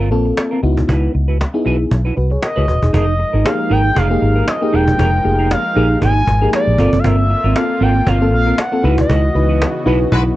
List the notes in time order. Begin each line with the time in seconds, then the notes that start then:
Already playing: G1
0.00 C4 F4 A#4
0.11 A#1 A#3 C4 F4 A4, muted clean electric guitar stroke, cajon slap
0.25 muted clean electric guitar stroke, cajon slap
0.37 muted clean electric guitar stroke, cajon slap
0.51 C4 F4 A#4, cajon slap
0.62 C#2 B3 D#4 E4 F#4, muted clean electric guitar stroke, cajon slap
0.77 muted clean electric guitar stroke, cajon bass
0.88 C#2 E4 F#4 B4, cajon bass
1.14 C#2, muted clean electric guitar stroke, cajon slap
1.28 E4 F#4 B4, cajon slap
1.39 muted clean electric guitar stroke, cajon slap
1.54 B3 D#4 E4 G#4, muted clean electric guitar stroke, cajon slap
1.65 B1 E4 F#4 B4, cajon slap
1.79 muted clean electric guitar stroke, cajon slap
1.91 B1, muted clean electric guitar stroke, cajon bass
2.05 E4 F#4 B4
2.16 C2 F#4 B4, muted clean electric guitar stroke, cajon slap
2.30 G#4 C#5, muted clean electric guitar stroke, cajon slap
2.42 A#4 D#5, muted clean electric guitar stroke, cajon slap
2.56 C#2 E4 F#4 G#4 B4 C#5
2.67 D#1 F#4 B4, muted clean electric guitar stroke, cajon bass
2.82 E1 D#4 G#4, muted clean electric guitar stroke, cajon bass
2.93 F1 F3 G#3 D#4 G#4 A#4 D#5, cajon bass
3.08 muted clean electric guitar stroke
3.19 muted clean electric guitar stroke, cajon slap
3.33 G#1 D#4 G#4 A#4, cajon slap
3.45 A#3 D#4 G4 G#4 F5, cajon slap
3.59 muted clean electric guitar stroke, cajon slap
3.70 G#1 D#4 G#4 A#4 G5
3.84 muted clean electric guitar stroke, cajon slap
3.95 F1 D#4 G#4 A#4 F5, cajon bass
4.10 A#3 D#4 G4 G#4, muted clean electric guitar stroke, cajon slap
4.22 G#1, muted clean electric guitar stroke, cajon slap
4.36 D#4 G#4 A#4, cajon slap
4.47 D#5, muted clean electric guitar stroke, cajon slap
4.61 A#3 D#4 G4 G#4, muted clean electric guitar stroke, cajon slap
4.73 E1 D#4 G#4 A#4 G5, cajon slap
4.87 muted clean electric guitar stroke, cajon bass
4.98 F1 D#4 G#4 A#4, cajon bass
5.13 muted clean electric guitar stroke
5.24 F1 A#3 D#4 G4 G#4, muted clean electric guitar stroke, cajon slap
5.39 D#4 G#4 A#4, cajon slap
5.51 F5, cajon slap
5.64 muted clean electric guitar stroke, cajon slap
5.75 A#1 A#3 D#4 G4 G#4 A#4
5.90 muted clean electric guitar stroke, cajon slap
6.02 G#1 D#4 G#4 A#4 G#5, cajon bass
6.16 muted clean electric guitar stroke
6.27 G#1, muted clean electric guitar stroke, cajon bass
6.42 A#3 D#4 G4 G#4 A#4, cajon slap
6.53 D5, muted clean electric guitar stroke, cajon slap
6.67 A#1, muted clean electric guitar stroke, cajon slap
6.78 G1 A#3 C4 F4 A4 A#4, cajon bass
6.93 F#1, muted clean electric guitar stroke, cajon bass
6.99 F5
7.04 G1 C4 F4 A#4 E5, cajon bass
7.19 muted clean electric guitar stroke
7.29 muted clean electric guitar stroke, cajon slap
7.44 G#1 C4 F4 A#4, cajon slap
7.55 A#3 C4 F4 A4 F5, cajon slap
7.70 muted clean electric guitar stroke, cajon slap
7.81 G#1 C4 F4 A#4 G5
7.95 muted clean electric guitar stroke, cajon slap
8.06 G1 C4 F4 A#4 F5, cajon bass
8.21 A#3 C4 F4 A4, muted clean electric guitar stroke, cajon slap
8.32 A#1 F5, muted clean electric guitar stroke, cajon slap
8.46 C4 F4 A#4, cajon slap
8.53 F5
8.58 F#5, muted clean electric guitar stroke, cajon slap
8.72 A#3 C4 F4 A4, muted clean electric guitar stroke, cajon slap
8.83 C#2 C#3 E3 B3 D#4 E4 F#4 B4 D#5, cajon slap
8.98 D#5, muted clean electric guitar stroke, cajon bass
9.09 C#2 E4 F#4 B4, cajon bass
9.23 muted clean electric guitar stroke, cajon slap
9.35 C#2 D#4 E4 F#4 B4, muted clean electric guitar stroke, cajon slap
9.49 E4 F#4 B4, cajon slap
9.62 cajon slap
9.75 muted clean electric guitar stroke, cajon slap
9.86 B1 D#4 E4 F#4 B4, cajon slap
10.01 muted clean electric guitar stroke, cajon slap
10.12 B1 G#3 E4 F#4 B4, cajon bass
10.26 muted clean electric guitar stroke